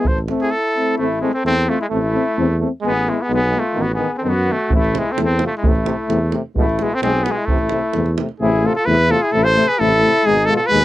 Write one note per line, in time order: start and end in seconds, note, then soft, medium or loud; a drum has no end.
0.00 0.10 E4 medium
0.05 0.31 A1 medium
0.05 0.19 C5 medium
0.05 davul low medium
0.09 0.19 A4 medium
0.18 davul high soft
0.28 0.52 A3 medium
0.28 0.52 C4 medium
0.28 davul high soft
0.41 0.54 E4 medium
0.41 0.52 G#4 medium
0.51 0.99 E4 medium
0.51 0.97 A4 loud
0.77 0.99 A3 soft
0.77 0.98 C4 soft
0.98 1.24 A1 medium
0.98 1.20 A3 medium
0.98 1.09 A3 medium
0.98 1.08 C4 medium
0.98 1.22 E4 medium
1.21 1.32 G#3 medium
1.21 1.31 A3 medium
1.21 1.31 C4 medium
1.21 1.33 E4 medium
1.34 1.44 C4 medium
1.34 1.44 A4 medium
1.44 1.70 E2 medium
1.44 1.54 A3 medium
1.44 1.55 C4 medium
1.44 1.71 C4 loud
1.44 1.70 A4 medium
1.67 1.77 A3 medium
1.67 1.81 A3 medium
1.67 1.77 C4 medium
1.67 1.79 F4 medium
1.79 1.86 G#3 medium
1.79 1.85 E4 medium
1.89 2.17 A1 medium
1.89 1.99 A3 medium
1.89 2.01 C4 medium
1.89 2.58 E4 medium
1.94 2.58 A3 medium
2.13 2.23 A3 medium
2.13 2.24 C4 medium
2.36 2.64 E2 loud
2.36 2.45 A3 medium
2.36 2.47 C4 medium
2.59 2.69 A3 medium
2.59 2.71 C4 medium
2.81 3.10 A1 medium
2.81 2.91 G#3 medium
2.81 2.93 B3 medium
2.81 3.10 G#4 loud
2.87 3.11 B3 loud
3.06 3.16 G#3 medium
3.06 3.22 G#3 medium
3.06 3.17 B3 medium
3.06 3.24 E4 medium
3.21 3.32 B3 medium
3.21 3.32 G#4 medium
3.28 3.55 B1 loud
3.28 3.38 G#3 medium
3.28 3.39 B3 medium
3.33 3.61 B3 loud
3.33 3.59 G#4 medium
3.51 3.60 G#3 medium
3.51 3.63 B3 medium
3.57 3.83 A3 medium
3.57 3.83 F4 medium
3.74 4.02 A1 medium
3.74 3.84 D#3 medium
3.74 3.86 B3 medium
3.81 3.91 B3 medium
3.81 3.91 F#4 medium
3.94 4.07 D#3 medium
3.94 4.14 B3 medium
3.94 4.17 G#4 medium
3.99 4.09 B3 medium
4.14 4.17 B3 medium
4.14 4.24 C4 medium
4.14 4.19 G#4 medium
4.18 4.32 D#3 soft
4.18 4.22 A4 medium
4.18 4.30 A4 medium
4.23 4.49 F#2 medium
4.23 4.33 B3 medium
4.23 4.30 C4 medium
4.29 4.53 B3 loud
4.29 4.53 F#4 medium
4.46 4.55 D#3 soft
4.46 4.56 B3 medium
4.52 4.73 A3 medium
4.52 4.73 F#4 medium
4.69 4.96 A1 medium
4.69 4.79 C3 medium
4.69 4.79 A3 medium
4.69 davul low medium
4.75 5.00 A3 medium
4.75 4.99 E4 medium
4.84 davul high soft
4.93 5.03 C3 medium
4.93 5.03 A3 medium
4.93 davul high medium
4.98 5.13 G#3 medium
4.98 5.13 E4 medium
5.11 5.20 C4 medium
5.11 5.19 A4 medium
5.16 5.43 E2 medium
5.16 5.25 C3 soft
5.16 5.26 A3 medium
5.16 davul high medium
5.21 5.42 C4 loud
5.21 5.40 A4 medium
5.39 5.49 C3 medium
5.39 5.49 A3 soft
5.39 davul high medium
5.43 5.54 A3 medium
5.43 5.53 F4 medium
5.56 5.70 G#3 medium
5.56 5.67 E4 medium
5.63 5.89 A1 medium
5.63 5.73 C3 medium
5.63 5.72 A3 medium
5.63 davul low loud
5.67 6.35 A3 medium
5.67 6.35 E4 medium
5.75 davul high soft
5.85 5.94 C3 medium
5.85 5.95 A3 medium
5.85 davul high medium
6.08 6.35 E2 medium
6.08 6.18 C3 medium
6.08 6.18 A3 medium
6.08 davul high medium
6.32 6.41 C3 medium
6.32 6.41 A3 medium
6.32 davul high medium
6.55 6.80 A1 medium
6.55 6.65 B2 medium
6.55 6.65 G#3 medium
6.55 6.80 E4 medium
6.55 davul low medium
6.59 6.84 A3 medium
6.69 davul high soft
6.79 6.91 B2 medium
6.79 6.88 G#3 medium
6.79 6.95 G#3 medium
6.79 6.95 E4 medium
6.79 davul high medium
6.93 7.02 C4 loud
6.93 7.02 A4 medium
7.01 7.27 B1 medium
7.01 7.13 B2 medium
7.01 7.12 G#3 medium
7.01 7.25 C4 loud
7.01 7.25 G#4 medium
7.01 davul high medium
7.23 7.36 B2 medium
7.23 7.36 G#3 medium
7.23 7.33 B3 medium
7.23 7.38 G#4 medium
7.23 davul high medium
7.32 7.47 G#3 medium
7.37 7.48 E4 medium
7.45 7.73 A1 medium
7.45 7.57 C3 medium
7.45 8.16 A3 medium
7.45 7.58 A3 medium
7.45 8.17 E4 medium
7.45 davul low medium
7.58 davul high soft
7.69 7.81 C3 medium
7.69 7.81 A3 medium
7.69 davul high medium
7.93 8.20 E2 loud
7.93 8.05 C3 medium
7.93 8.03 A3 medium
7.93 davul high medium
8.06 davul high soft
8.18 8.27 C3 medium
8.18 8.27 A3 soft
8.18 davul high medium
8.29 davul high soft
8.40 8.66 A1 medium
8.40 8.50 C3 medium
8.40 8.50 A3 medium
8.40 8.66 E4 loud
8.40 8.68 G#4 medium
8.63 8.74 C3 medium
8.63 8.72 A3 medium
8.63 8.76 F4 medium
8.63 8.74 A4 medium
8.75 8.88 F4 medium
8.75 8.87 A4 loud
8.85 9.12 E2 loud
8.85 8.97 C3 medium
8.85 8.96 A3 medium
8.85 9.11 E4 medium
8.85 9.12 B4 loud
9.09 9.18 C3 medium
9.09 9.19 A3 medium
9.09 9.25 F4 medium
9.09 9.23 A4 loud
9.22 9.35 E4 medium
9.22 9.33 G#4 medium
9.32 9.59 A1 medium
9.32 9.42 C3 medium
9.32 9.42 A3 medium
9.32 9.47 E4 loud
9.32 9.45 A4 loud
9.43 9.70 A4 medium
9.43 9.69 C5 loud
9.56 9.67 C3 medium
9.56 9.65 A3 medium
9.68 9.80 G#4 medium
9.68 9.81 B4 loud
9.78 10.05 A1 loud
9.78 9.90 C3 medium
9.78 9.89 A3 medium
9.78 10.27 E4 loud
9.78 10.27 A4 loud
10.01 10.13 C3 medium
10.01 10.11 A3 medium
10.24 10.50 G#1 medium
10.24 10.36 B2 medium
10.24 10.33 G#3 medium
10.24 10.52 D#4 loud
10.24 10.47 G#4 loud
10.45 10.56 G#3 medium
10.45 10.55 A4 loud
10.50 10.60 B2 medium
10.50 10.61 F4 medium
10.56 10.68 A4 medium
10.62 10.72 F4 medium
10.66 10.79 G#3 medium
10.66 10.85 G#4 loud
10.66 10.85 B4 loud
10.71 10.85 D#2 loud
10.71 10.83 B2 medium